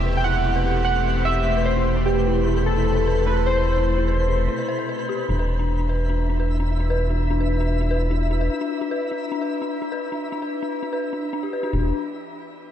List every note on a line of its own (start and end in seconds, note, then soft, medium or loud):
0.00 4.48 E1 medium
0.00 5.25 B2 medium
0.00 5.25 C3 medium
0.00 5.25 A3 medium
0.00 0.26 E4 medium
0.00 2.03 G4 medium
0.00 0.05 B4 medium
0.00 5.30 C5 medium
0.00 0.19 E5 loud
0.00 5.30 B5 medium
0.05 0.14 B4 medium
0.17 0.25 G5 medium
0.24 0.31 E4 medium
0.24 0.83 F#5 loud
0.46 0.55 E4 medium
0.56 0.65 B4 medium
0.76 0.81 E4 medium
0.85 1.27 F#5 loud
0.96 1.05 E4 medium
1.06 1.15 B4 medium
1.25 1.32 E4 medium
1.25 1.67 E5 loud
1.46 1.55 E4 medium
1.56 1.65 B4 medium
1.65 1.94 C5 loud
1.77 1.82 E4 medium
1.97 2.06 E4 medium
2.06 2.68 G4 loud
2.06 5.26 A4 medium
2.06 2.16 B4 medium
2.27 2.32 E4 medium
2.47 2.56 E4 medium
2.57 2.66 B4 medium
2.66 3.23 A4 loud
2.77 2.82 E4 medium
2.97 3.06 E4 medium
3.07 3.16 B4 medium
3.26 3.33 E4 medium
3.26 3.46 B4 medium
3.46 3.56 E4 medium
3.46 4.84 C5 medium
3.58 3.67 B4 medium
3.78 3.83 E4 medium
3.98 4.07 E4 medium
4.08 4.17 B4 medium
4.28 4.33 E4 medium
4.48 4.57 E4 medium
4.59 4.67 B4 medium
4.69 4.77 C5 loud
4.79 4.87 C5 medium
4.89 4.98 B4 medium
4.99 5.08 B4 medium
5.09 5.18 G4 medium
5.29 8.49 E1 medium
5.29 5.38 D4 medium
5.29 11.74 E4 medium
5.29 11.74 E5 medium
5.39 5.48 B4 medium
5.59 5.64 D4 medium
5.79 5.88 D4 medium
5.89 5.98 B4 medium
6.09 6.15 D4 medium
6.30 6.38 D4 medium
6.40 6.48 B4 medium
6.60 6.65 D4 medium
6.80 6.89 D4 medium
6.90 6.99 B4 medium
7.10 7.15 D4 medium
7.30 7.39 D4 medium
7.40 7.49 B4 medium
7.61 7.66 D4 medium
7.81 7.89 D4 medium
7.91 7.99 B4 medium
8.11 8.16 D4 medium
8.31 8.40 D4 medium
8.41 8.50 B4 medium
8.61 8.66 D4 medium
8.81 8.90 D4 medium
8.91 9.00 B4 medium
9.11 9.17 D4 medium
9.32 9.40 D4 medium
9.42 9.50 B4 medium
9.62 9.67 D4 medium
9.82 9.91 D4 medium
9.92 10.01 B4 medium
10.12 10.17 D4 medium
10.32 10.41 D4 medium
10.42 10.51 B4 medium
10.62 10.68 D4 medium
10.83 10.91 D4 medium
10.93 11.01 B4 medium
11.13 11.22 D4 medium
11.33 11.42 D4 medium
11.43 11.52 G4 medium
11.53 11.62 B4 medium
11.63 11.72 D4 loud
11.73 11.92 E1 loud
11.73 11.92 D4 medium